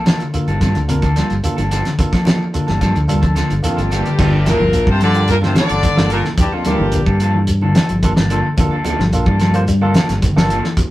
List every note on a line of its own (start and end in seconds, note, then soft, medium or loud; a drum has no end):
0.06 0.23 F3 medium
0.06 0.23 A#3 medium
0.06 0.23 D4 medium
0.06 0.23 A4 medium
0.06 snare medium
0.06 closed hi-hat soft
0.06 high conga medium
0.06 shekere medium
0.20 0.32 D3 medium
0.20 closed hi-hat soft
0.20 shekere soft
0.33 0.57 D3 medium
0.33 0.50 A#3 medium
0.33 0.51 D4 medium
0.33 0.51 F4 medium
0.33 0.51 A4 medium
0.33 closed hi-hat medium
0.33 high conga soft
0.33 shekere medium
0.48 0.59 G1 medium
0.48 0.60 A#3 soft
0.48 0.60 D4 medium
0.48 0.61 A4 medium
0.48 closed hi-hat soft
0.48 high conga medium
0.48 shekere soft
0.60 0.73 G2 medium
0.60 0.74 C3 medium
0.60 0.78 F3 medium
0.60 0.78 A#3 medium
0.60 0.78 D4 medium
0.60 0.78 A4 medium
0.60 kick medium
0.60 closed hi-hat soft
0.60 high conga medium
0.60 shekere medium
0.75 1.21 D2 medium
0.75 0.87 D3 medium
0.75 closed hi-hat soft
0.75 shekere soft
0.88 1.01 C3 medium
0.88 1.05 A#3 medium
0.88 1.06 D4 medium
0.88 1.06 F4 medium
0.88 1.06 A#4 medium
0.88 closed hi-hat medium
0.88 high conga soft
0.88 shekere medium
1.02 1.15 D3 medium
1.02 1.15 A#3 soft
1.02 1.15 D4 soft
1.02 1.15 A4 medium
1.02 kick medium
1.02 closed hi-hat soft
1.02 shekere soft
1.16 1.33 F3 medium
1.16 1.40 G3 medium
1.16 1.33 A#3 medium
1.16 1.33 D4 medium
1.16 1.33 A4 medium
1.16 snare soft
1.16 closed hi-hat soft
1.16 shekere medium
1.30 1.42 G1 medium
1.30 closed hi-hat soft
1.30 shekere soft
1.43 1.60 A#3 medium
1.43 1.60 D4 medium
1.43 1.61 F4 medium
1.43 1.61 A4 medium
1.43 muted fingered electric bass stroke soft
1.43 closed hi-hat medium
1.43 high conga medium
1.43 shekere medium
1.57 1.81 G1 medium
1.57 1.81 E3 medium
1.57 1.70 A#3 soft
1.57 1.70 D4 soft
1.57 1.70 A4 medium
1.57 closed hi-hat soft
1.57 shekere soft
1.71 1.88 F3 medium
1.71 1.88 A#3 medium
1.71 1.88 D4 medium
1.71 1.88 A4 medium
1.71 closed hi-hat soft
1.71 high conga medium
1.71 shekere medium
1.85 2.09 D3 medium
1.85 snare soft
1.85 closed hi-hat soft
1.85 shekere soft
1.99 2.15 A#3 medium
1.99 2.15 D4 medium
1.99 2.16 F4 medium
1.99 2.16 A4 medium
1.99 kick medium
1.99 closed hi-hat medium
1.99 high conga soft
1.99 shekere medium
2.12 2.25 F3 medium
2.12 2.25 A#3 soft
2.12 2.25 D4 medium
2.12 2.25 A4 medium
2.12 kick medium
2.12 snare soft
2.12 closed hi-hat soft
2.12 shekere soft
2.25 2.42 F3 medium
2.25 2.50 F3 medium
2.25 2.43 A#3 medium
2.25 2.43 D4 medium
2.25 2.43 A4 medium
2.25 snare medium
2.25 closed hi-hat medium
2.25 high conga medium
2.25 shekere medium
2.41 shekere soft
2.53 2.66 D3 medium
2.53 2.70 A#3 medium
2.53 2.70 D4 medium
2.53 2.71 F4 medium
2.53 2.71 A4 medium
2.53 closed hi-hat medium
2.53 high conga soft
2.53 shekere medium
2.67 2.79 G1 medium
2.67 2.80 E3 medium
2.67 2.80 A#3 soft
2.67 2.80 D4 medium
2.67 2.81 A4 medium
2.67 snare soft
2.67 closed hi-hat soft
2.67 high conga medium
2.67 shekere soft
2.81 2.93 G2 medium
2.81 2.98 F3 medium
2.81 3.05 F3 medium
2.81 2.98 A#3 medium
2.81 2.98 D4 medium
2.81 2.98 A4 medium
2.81 kick medium
2.81 closed hi-hat soft
2.81 high conga medium
2.81 shekere medium
2.95 3.41 D2 medium
2.95 closed hi-hat soft
2.95 shekere soft
3.07 3.21 G3 medium
3.07 3.25 A#3 medium
3.07 3.25 D4 medium
3.07 3.25 F4 medium
3.07 3.26 A4 loud
3.07 closed hi-hat medium
3.07 high conga soft
3.07 shekere medium
3.21 3.35 F3 medium
3.21 3.35 D4 soft
3.21 3.35 A4 medium
3.21 muted clean electric guitar stroke soft
3.21 kick medium
3.21 closed hi-hat soft
3.21 shekere soft
3.35 3.60 D3 medium
3.35 3.52 F3 medium
3.35 3.52 A#3 medium
3.35 3.53 D4 medium
3.35 3.53 A4 medium
3.35 snare soft
3.35 closed hi-hat soft
3.35 shekere medium
3.50 3.62 G1 medium
3.50 closed hi-hat soft
3.50 shekere soft
3.63 3.95 F2 medium
3.63 3.88 E3 medium
3.63 3.80 A#3 medium
3.63 3.80 D4 medium
3.63 3.80 F4 medium
3.63 3.91 F4 medium
3.63 3.81 A4 medium
3.63 closed hi-hat medium
3.63 high conga medium
3.63 shekere medium
3.77 4.01 G1 medium
3.77 3.90 A#3 soft
3.77 3.90 D4 medium
3.77 3.90 A4 medium
3.77 closed hi-hat soft
3.77 shekere soft
3.90 4.47 G2 medium
3.90 4.07 F3 medium
3.90 4.08 A#3 medium
3.90 4.08 D4 medium
3.90 4.47 G4 medium
3.90 4.08 A4 medium
3.90 closed hi-hat soft
3.90 high conga medium
3.90 shekere medium
4.06 4.17 D3 medium
4.06 closed hi-hat soft
4.06 shekere soft
4.18 4.53 G1 loud
4.18 4.42 D3 medium
4.18 4.32 F3 medium
4.18 4.35 A#3 medium
4.18 4.32 A#3 medium
4.18 4.35 D4 medium
4.18 4.31 D4 medium
4.18 4.36 F4 medium
4.18 4.30 A4 medium
4.18 4.36 A4 medium
4.18 kick medium
4.18 crash medium
4.18 high conga soft
4.18 low conga medium
4.18 shekere medium
4.31 4.46 D4 soft
4.31 4.45 A4 medium
4.45 4.92 A#2 medium
4.45 4.62 F3 medium
4.45 4.62 A#3 medium
4.45 4.63 A4 medium
4.45 4.86 A#4 medium
4.45 snare soft
4.45 closed hi-hat soft
4.45 high conga medium
4.45 low conga medium
4.45 shekere soft
4.60 4.71 G1 medium
4.60 4.84 F3 medium
4.60 low conga medium
4.73 4.85 A#1 medium
4.73 4.86 A#3 medium
4.73 4.86 D4 medium
4.73 4.86 F4 medium
4.73 4.86 A4 medium
4.73 closed hi-hat medium
4.73 high conga soft
4.73 shekere medium
4.87 5.55 G2 medium
4.87 5.02 C3 medium
4.87 5.01 A#3 soft
4.87 5.01 D4 medium
4.87 5.01 A4 medium
4.87 5.02 C5 medium
4.87 kick medium
5.00 5.28 D3 medium
5.00 5.25 F3 medium
5.00 5.18 F3 medium
5.00 5.18 A#3 medium
5.00 5.18 D4 medium
5.00 5.18 A4 medium
5.00 5.28 D5 loud
5.00 closed hi-hat soft
5.00 high conga medium
5.00 shekere soft
5.14 5.23 A#3 medium
5.14 5.23 D4 medium
5.14 5.23 F4 medium
5.14 5.23 G4 medium
5.14 closed hi-hat soft
5.28 5.36 A#2 medium
5.28 5.52 G3 loud
5.28 5.36 A#4 loud
5.28 closed hi-hat medium
5.28 shekere medium
5.41 5.56 C3 medium
5.41 5.58 A#3 medium
5.41 5.55 A#3 soft
5.41 5.59 D4 medium
5.41 5.55 D4 soft
5.41 5.59 F4 medium
5.41 5.55 A4 medium
5.41 5.59 A4 medium
5.41 5.56 C5 medium
5.41 snare soft
5.41 high conga medium
5.55 6.09 D3 medium
5.55 5.80 E3 medium
5.55 5.72 F3 medium
5.55 5.73 A#3 medium
5.55 5.73 D4 medium
5.55 5.73 A4 medium
5.55 6.08 D5 loud
5.55 snare medium
5.55 closed hi-hat medium
5.55 high conga medium
5.55 shekere soft
5.69 5.92 G1 medium
5.69 closed hi-hat soft
5.83 5.96 D3 medium
5.83 kick medium
5.83 closed hi-hat medium
5.83 high conga medium
5.83 shekere medium
5.96 6.20 G1 medium
5.96 6.09 F3 medium
5.96 6.17 A#3 medium
5.96 6.10 A#3 soft
5.96 6.17 D4 medium
5.96 6.10 D4 medium
5.96 6.18 F4 medium
5.96 6.11 A4 soft
5.96 6.18 A4 medium
5.96 snare medium
6.10 6.25 A#2 medium
6.10 6.23 D3 medium
6.10 6.27 F3 medium
6.10 6.27 A#3 medium
6.10 6.28 D4 medium
6.10 6.28 A4 medium
6.10 6.24 A#4 medium
6.10 closed hi-hat medium
6.10 shekere soft
6.24 6.37 E3 medium
6.24 snare soft
6.24 high conga medium
6.38 6.56 G2 medium
6.38 6.52 G4 medium
6.38 muted clean electric guitar stroke medium
6.38 kick medium
6.38 closed hi-hat medium
6.38 high conga soft
6.38 low conga medium
6.38 shekere medium
6.52 6.67 F2 medium
6.52 6.65 A#3 soft
6.52 6.65 D4 soft
6.52 6.66 F4 medium
6.52 6.65 A4 medium
6.65 7.18 G2 medium
6.65 6.82 F3 medium
6.65 6.78 G3 medium
6.65 6.99 A#3 medium
6.65 6.82 A#3 medium
6.65 6.99 D4 medium
6.65 6.83 D4 medium
6.65 6.99 F4 medium
6.65 7.17 G4 medium
6.65 6.83 A4 medium
6.65 7.00 A#4 medium
6.65 closed hi-hat medium
6.65 high conga loud
6.65 low conga medium
6.65 shekere soft
6.79 6.91 G1 medium
6.79 6.91 E3 medium
6.92 7.05 A#1 medium
6.92 7.17 D3 medium
6.92 closed hi-hat medium
6.92 high conga soft
6.92 shekere medium
7.06 7.75 G2 medium
7.06 7.20 A#3 soft
7.06 7.20 D4 medium
7.06 7.20 A4 soft
7.06 kick medium
7.20 7.37 F3 medium
7.20 7.38 A#3 medium
7.20 7.38 D4 medium
7.20 7.38 A4 medium
7.20 closed hi-hat medium
7.20 shekere soft
7.34 7.58 E3 medium
7.47 closed hi-hat medium
7.47 high conga soft
7.47 shekere medium
7.61 7.74 D3 medium
7.61 7.76 A#3 soft
7.61 7.75 D4 soft
7.61 7.76 A4 medium
7.61 high conga medium
7.75 7.88 E3 medium
7.75 7.93 D4 medium
7.75 7.93 A4 medium
7.75 snare medium
7.75 closed hi-hat medium
7.75 high conga medium
7.75 shekere soft
7.89 8.13 G1 medium
7.89 8.13 F3 medium
7.89 closed hi-hat soft
8.02 8.12 A#3 loud
8.02 8.12 D4 medium
8.02 8.12 F4 loud
8.02 8.12 A4 loud
8.02 kick medium
8.02 closed hi-hat medium
8.02 high conga medium
8.02 shekere medium
8.16 8.40 G1 medium
8.16 8.28 E3 medium
8.16 8.28 A#3 medium
8.16 8.29 D4 medium
8.16 snare medium
8.29 8.54 D3 medium
8.29 8.47 F3 medium
8.29 8.47 A#3 medium
8.29 8.39 A#3 medium
8.29 8.47 D4 medium
8.29 8.39 D4 medium
8.29 8.39 F4 medium
8.29 8.47 A4 medium
8.29 8.40 A4 medium
8.29 closed hi-hat soft
8.29 shekere soft
8.57 8.81 D3 medium
8.57 8.75 A#3 medium
8.57 8.75 D4 medium
8.57 8.75 F4 medium
8.57 8.76 A4 loud
8.57 kick medium
8.57 closed hi-hat medium
8.57 high conga soft
8.57 low conga medium
8.57 shekere medium
8.71 8.84 A#3 medium
8.71 8.84 D4 medium
8.71 8.84 A4 medium
8.84 9.02 F3 medium
8.84 9.02 A#3 medium
8.84 9.02 D4 medium
8.84 9.02 A4 medium
8.84 closed hi-hat medium
8.84 high conga medium
8.84 low conga medium
8.84 shekere soft
8.99 9.10 G1 medium
8.99 9.23 F3 medium
8.99 snare soft
9.12 9.24 A#1 medium
9.12 9.26 A#3 medium
9.12 9.26 D4 medium
9.12 9.26 F4 medium
9.12 9.26 A4 medium
9.12 closed hi-hat medium
9.12 high conga soft
9.12 shekere medium
9.26 9.95 G2 medium
9.26 9.39 E3 medium
9.26 9.39 A#3 medium
9.26 9.39 D4 medium
9.26 9.40 A4 medium
9.26 kick medium
9.40 9.57 F3 medium
9.40 9.64 F3 medium
9.40 9.57 A#3 medium
9.40 9.57 D4 medium
9.40 9.57 A4 medium
9.40 snare soft
9.40 closed hi-hat soft
9.40 high conga medium
9.40 shekere soft
9.54 9.62 A#3 loud
9.54 9.63 D4 medium
9.54 9.63 F4 medium
9.54 9.63 C5 loud
9.54 closed hi-hat soft
9.68 9.92 G3 loud
9.68 closed hi-hat medium
9.68 shekere medium
9.81 9.98 A#3 loud
9.81 9.94 A#3 soft
9.81 9.95 D4 soft
9.81 9.98 D4 medium
9.81 9.98 F4 loud
9.81 9.95 A4 medium
9.81 9.99 A4 loud
9.81 high conga medium
9.94 10.12 F3 medium
9.94 10.12 A#3 medium
9.94 10.12 D4 medium
9.94 10.12 A4 medium
9.94 snare medium
9.94 closed hi-hat soft
9.94 high conga medium
9.94 shekere soft
10.09 10.32 G1 medium
10.09 snare soft
10.09 closed hi-hat soft
10.22 10.35 D3 medium
10.22 kick medium
10.22 closed hi-hat medium
10.22 high conga medium
10.22 shekere medium
10.36 10.59 G1 medium
10.36 10.49 F3 medium
10.36 10.57 A#3 loud
10.36 10.50 A#3 medium
10.36 10.57 D4 medium
10.36 10.50 D4 medium
10.36 10.58 F4 medium
10.36 10.50 A4 medium
10.36 10.58 A4 loud
10.36 snare medium
10.50 10.62 D3 medium
10.50 10.67 F3 medium
10.50 10.67 A#3 medium
10.50 10.67 D4 medium
10.50 10.67 A4 medium
10.50 closed hi-hat medium
10.50 shekere soft
10.64 10.76 E3 medium
10.64 snare soft
10.77 muted clean electric guitar stroke medium
10.77 kick medium
10.77 closed hi-hat medium
10.77 high conga soft
10.77 low conga medium
10.77 shekere medium